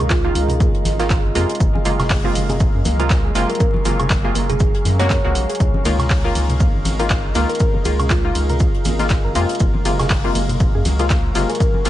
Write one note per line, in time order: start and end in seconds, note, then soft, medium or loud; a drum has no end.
0.00 0.31 C#2 loud
0.00 0.11 D#3 medium
0.00 9.56 G#3 medium
0.00 0.11 A#3 medium
0.00 1.56 C#4 medium
0.00 1.56 D#4 medium
0.00 0.12 F4 medium
0.00 1.56 F4 medium
0.00 3.14 G#4 medium
0.00 1.56 A#4 medium
0.00 3.22 D#5 medium
0.00 3.22 F5 medium
0.10 0.50 F4 medium
0.10 kick loud
0.10 snare loud
0.10 clap loud
0.10 closed hi-hat medium
0.10 shaker medium
0.10 shaker soft
0.24 0.50 D#3 medium
0.24 0.50 A#3 medium
0.24 0.51 F4 medium
0.24 0.32 A#4 medium
0.35 0.69 C#2 medium
0.35 open hi-hat loud
0.35 high conga medium
0.35 shaker medium
0.48 closed hi-hat medium
0.48 low conga medium
0.48 shaker soft
0.60 0.66 A#3 medium
0.60 kick loud
0.60 closed hi-hat medium
0.60 shaker soft
0.60 shaker medium
0.75 closed hi-hat soft
0.85 1.19 G#1 loud
0.85 snare soft
0.85 open hi-hat loud
0.85 high conga medium
0.85 shaker medium
0.99 1.15 D#3 medium
0.99 1.15 A#3 medium
0.99 1.15 F4 loud
0.99 1.07 A#4 medium
0.99 snare medium
0.99 closed hi-hat medium
0.99 shaker soft
1.10 kick loud
1.10 snare loud
1.10 clap loud
1.10 closed hi-hat medium
1.10 shaker soft
1.10 shaker medium
1.25 1.37 G#1 loud
1.35 1.46 F2 loud
1.35 1.83 C3 loud
1.35 1.83 G#3 medium
1.35 1.41 A#3 medium
1.35 1.83 A#3 medium
1.35 1.83 F4 loud
1.35 open hi-hat loud
1.35 shaker medium
1.50 closed hi-hat soft
1.50 shaker soft
1.55 closed hi-hat medium
1.60 1.71 F#1 loud
1.60 5.60 F#3 medium
1.60 5.56 F#3 medium
1.60 5.56 A#3 medium
1.60 11.89 A#4 medium
1.60 11.89 F5 medium
1.60 kick loud
1.60 closed hi-hat medium
1.60 shaker medium
1.60 shaker soft
1.75 1.82 G#4 medium
1.75 high conga loud
1.85 2.31 F#1 medium
1.85 2.21 C3 medium
1.85 2.21 G#3 medium
1.85 2.21 A#3 medium
1.85 2.21 F4 medium
1.85 open hi-hat loud
1.85 shaker medium
1.98 6.28 C#6 medium
1.98 snare medium
1.98 closed hi-hat medium
1.98 low conga medium
1.98 high woodblock medium
1.98 shaker soft
2.10 2.16 A#3 medium
2.10 kick loud
2.10 snare loud
2.10 clap loud
2.10 closed hi-hat medium
2.10 open hi-hat medium
2.10 shaker soft
2.24 2.96 C3 medium
2.24 2.96 G#3 medium
2.24 2.96 A#3 medium
2.24 2.96 F4 loud
2.31 6.52 G#5 medium
2.35 2.68 F#1 medium
2.35 open hi-hat loud
2.35 high conga medium
2.35 shaker medium
2.49 2.57 G#4 medium
2.49 closed hi-hat medium
2.49 low conga medium
2.49 shaker soft
2.60 kick loud
2.60 closed hi-hat medium
2.60 shaker medium
2.60 shaker soft
2.72 2.82 F#2 medium
2.72 7.22 A#5 medium
2.85 3.31 C#2 medium
2.85 2.91 A#3 medium
2.85 snare soft
2.85 open hi-hat loud
2.85 high conga medium
2.85 shaker medium
2.99 3.33 C3 medium
2.99 3.33 G#3 medium
2.99 3.33 A#3 medium
2.99 3.33 F4 loud
2.99 closed hi-hat medium
2.99 shaker soft
3.10 kick loud
3.10 snare loud
3.10 clap loud
3.10 closed hi-hat medium
3.10 shaker soft
3.10 shaker medium
3.24 3.32 G#4 medium
3.35 3.46 F#1 loud
3.35 3.83 C3 loud
3.35 3.83 G#3 medium
3.35 3.83 A#3 medium
3.35 3.83 F4 loud
3.35 snare soft
3.35 open hi-hat loud
3.35 shaker medium
3.50 3.56 A#4 medium
3.50 closed hi-hat soft
3.50 shaker soft
3.55 closed hi-hat medium
3.60 3.66 A#3 medium
3.60 3.69 A#4 medium
3.60 kick loud
3.60 closed hi-hat medium
3.60 shaker medium
3.60 shaker soft
3.74 high conga loud
3.85 4.31 F#1 medium
3.85 4.11 C3 medium
3.85 4.11 G#3 medium
3.85 4.11 A#3 medium
3.85 4.12 F4 medium
3.85 open hi-hat loud
3.85 shaker medium
3.99 4.07 G#4 medium
3.99 closed hi-hat medium
3.99 low conga medium
3.99 high woodblock medium
3.99 shaker soft
4.10 kick loud
4.10 snare loud
4.10 clap loud
4.10 closed hi-hat medium
4.10 shaker soft
4.10 shaker medium
4.24 4.50 C3 medium
4.24 4.50 G#3 medium
4.24 4.50 A#3 medium
4.24 4.50 F4 medium
4.35 4.68 F#1 medium
4.35 4.41 A#3 medium
4.35 open hi-hat loud
4.35 high conga medium
4.35 shaker medium
4.49 4.59 G#4 loud
4.49 closed hi-hat soft
4.49 low conga medium
4.49 shaker soft
4.60 kick loud
4.60 closed hi-hat medium
4.60 shaker medium
4.60 shaker soft
4.74 4.82 G#4 medium
4.74 closed hi-hat soft
4.85 5.18 F#2 loud
4.85 snare soft
4.85 open hi-hat loud
4.85 high conga medium
4.85 shaker medium
4.99 5.14 C3 loud
4.99 5.15 G#3 medium
4.99 5.15 A#3 medium
4.99 5.15 F#4 loud
4.99 5.66 C#5 medium
4.99 snare medium
4.99 closed hi-hat medium
4.99 shaker soft
5.10 5.16 A#3 medium
5.10 kick loud
5.10 snare loud
5.10 clap loud
5.10 closed hi-hat medium
5.10 shaker soft
5.10 shaker loud
5.24 5.37 C#2 loud
5.24 5.59 C3 medium
5.24 5.59 G#3 medium
5.24 5.59 A#3 medium
5.24 5.59 F#4 medium
5.35 5.46 A#1 loud
5.35 open hi-hat loud
5.35 shaker medium
5.49 5.57 G#4 medium
5.49 closed hi-hat soft
5.49 shaker soft
5.55 closed hi-hat medium
5.60 5.71 C#2 loud
5.60 9.56 C#4 medium
5.60 9.56 D#4 medium
5.60 kick loud
5.60 closed hi-hat medium
5.60 shaker loud
5.60 shaker soft
5.74 high conga medium
5.85 6.31 C#2 medium
5.85 6.21 D#3 medium
5.85 5.91 A#3 medium
5.85 6.21 A#3 medium
5.85 6.21 F4 medium
5.85 open hi-hat loud
5.85 ride medium
5.85 shaker medium
5.99 snare medium
5.99 closed hi-hat medium
5.99 low conga medium
5.99 high woodblock medium
5.99 shaker soft
6.08 10.74 G#4 medium
6.08 kick loud
6.08 snare loud
6.08 clap loud
6.08 closed hi-hat medium
6.08 open hi-hat medium
6.08 shaker soft
6.17 11.09 F5 medium
6.24 6.96 D#3 medium
6.24 6.96 A#3 medium
6.24 6.96 F4 loud
6.24 6.32 A#4 medium
6.34 6.68 C#2 medium
6.34 10.37 D#5 medium
6.34 open hi-hat loud
6.34 ride medium
6.34 high conga medium
6.34 shaker medium
6.49 closed hi-hat medium
6.49 low conga medium
6.49 shaker soft
6.60 6.66 A#3 medium
6.60 kick loud
6.60 closed hi-hat medium
6.60 shaker medium
6.60 shaker soft
6.74 6.82 G#1 medium
6.85 7.31 G#1 medium
6.85 snare soft
6.85 open hi-hat loud
6.85 ride medium
6.85 high conga medium
6.85 shaker medium
6.99 7.33 D#3 medium
6.99 7.33 A#3 medium
6.99 7.33 F4 loud
6.99 7.07 A#4 medium
6.99 closed hi-hat medium
6.99 shaker soft
7.10 kick loud
7.10 snare loud
7.10 clap loud
7.10 closed hi-hat medium
7.10 shaker loud
7.10 shaker soft
7.35 7.46 C#2 loud
7.35 7.83 D#3 loud
7.35 7.41 A#3 medium
7.35 7.83 A#3 medium
7.35 7.83 F4 loud
7.35 snare medium
7.35 open hi-hat loud
7.35 ride medium
7.35 shaker medium
7.50 7.56 A#4 medium
7.50 closed hi-hat soft
7.50 shaker soft
7.55 closed hi-hat medium
7.60 7.69 A#4 medium
7.60 kick loud
7.60 closed hi-hat medium
7.60 shaker medium
7.60 shaker soft
7.74 7.82 A#4 medium
7.74 high conga medium
7.85 8.31 C#2 medium
7.85 8.11 D#3 medium
7.85 8.12 A#3 medium
7.85 8.12 F4 medium
7.85 8.08 G#4 medium
7.85 open hi-hat loud
7.85 ride medium
7.85 shaker medium
7.99 closed hi-hat medium
7.99 low conga medium
7.99 high woodblock medium
7.99 shaker soft
8.10 8.16 A#3 medium
8.10 8.50 F4 medium
8.10 kick loud
8.10 snare loud
8.10 clap loud
8.10 closed hi-hat medium
8.10 shaker soft
8.10 shaker medium
8.24 8.50 D#3 medium
8.24 8.50 A#3 medium
8.24 8.51 F4 medium
8.35 8.68 C#2 medium
8.35 open hi-hat loud
8.35 ride medium
8.35 high conga medium
8.35 shaker medium
8.49 8.57 A#4 medium
8.49 closed hi-hat medium
8.49 low conga medium
8.49 shaker soft
8.60 kick loud
8.60 closed hi-hat medium
8.60 shaker medium
8.60 shaker soft
8.75 closed hi-hat soft
8.85 9.18 G#1 loud
8.85 8.91 A#3 medium
8.85 snare soft
8.85 open hi-hat loud
8.85 ride medium
8.85 high conga medium
8.85 shaker medium
8.99 9.15 D#3 medium
8.99 9.15 A#3 medium
8.99 9.15 F4 medium
8.99 snare soft
8.99 closed hi-hat medium
8.99 shaker medium
9.09 kick loud
9.09 snare loud
9.09 clap loud
9.09 closed hi-hat medium
9.09 shaker medium
9.09 shaker soft
9.24 9.37 G#1 loud
9.24 9.32 A#4 medium
9.35 9.46 F2 loud
9.35 9.83 C3 medium
9.35 9.83 G#3 medium
9.35 9.83 A#3 medium
9.35 9.83 F4 loud
9.35 open hi-hat loud
9.35 ride medium
9.35 shaker medium
9.49 closed hi-hat soft
9.49 closed hi-hat medium
9.49 shaker soft
9.55 closed hi-hat medium
9.60 9.71 F#1 loud
9.60 11.89 F#3 medium
9.60 11.89 G#3 medium
9.60 9.66 A#3 medium
9.60 11.89 A#3 medium
9.60 kick loud
9.60 closed hi-hat medium
9.60 shaker medium
9.60 shaker soft
9.74 high conga medium
9.85 10.31 F#1 medium
9.85 10.21 C3 medium
9.85 10.21 G#3 medium
9.85 10.21 A#3 medium
9.85 10.21 F4 medium
9.85 open hi-hat loud
9.85 ride medium
9.85 shaker medium
9.99 10.07 G#4 medium
9.99 11.89 C#6 medium
9.99 snare medium
9.99 closed hi-hat medium
9.99 low conga medium
9.99 high woodblock medium
9.99 shaker soft
10.10 kick loud
10.10 snare loud
10.10 clap loud
10.10 closed hi-hat medium
10.10 open hi-hat medium
10.10 shaker soft
10.24 10.96 C3 medium
10.24 10.96 G#3 medium
10.24 10.96 A#3 medium
10.24 10.96 F4 loud
10.35 10.68 F#1 medium
10.35 10.41 A#3 medium
10.35 open hi-hat loud
10.35 ride medium
10.35 high conga medium
10.35 shaker medium
10.49 closed hi-hat medium
10.49 low conga medium
10.49 shaker soft
10.60 11.89 G#5 medium
10.60 kick loud
10.60 closed hi-hat medium
10.60 shaker medium
10.60 shaker soft
10.75 10.82 F#2 medium
10.75 10.82 G#4 medium
10.85 11.31 C#2 medium
10.85 snare soft
10.85 open hi-hat loud
10.85 ride medium
10.85 high conga medium
10.85 shaker medium
10.99 11.33 C3 medium
10.99 11.33 G#3 medium
10.99 11.33 A#3 medium
10.99 11.33 F4 loud
10.99 closed hi-hat medium
10.99 shaker soft
11.04 11.89 A#5 medium
11.10 11.16 A#3 medium
11.10 kick loud
11.10 snare loud
11.10 clap loud
11.10 closed hi-hat medium
11.10 shaker loud
11.10 shaker soft
11.35 11.46 F#1 loud
11.35 11.83 C3 loud
11.35 11.83 G#3 medium
11.35 11.83 A#3 medium
11.35 11.83 F4 loud
11.35 snare medium
11.35 open hi-hat loud
11.35 ride medium
11.35 shaker medium
11.49 11.57 G#4 medium
11.49 11.56 A#4 medium
11.49 closed hi-hat medium
11.49 shaker soft
11.55 closed hi-hat medium
11.60 11.69 A#4 medium
11.60 kick loud
11.60 closed hi-hat medium
11.60 shaker soft
11.60 shaker medium
11.74 high conga medium
11.85 11.89 F#1 medium
11.85 11.89 C3 medium
11.85 11.89 G#3 medium
11.85 11.89 A#3 medium
11.85 11.89 F4 medium
11.85 snare loud
11.85 open hi-hat loud
11.85 open hi-hat medium
11.85 ride medium
11.85 shaker medium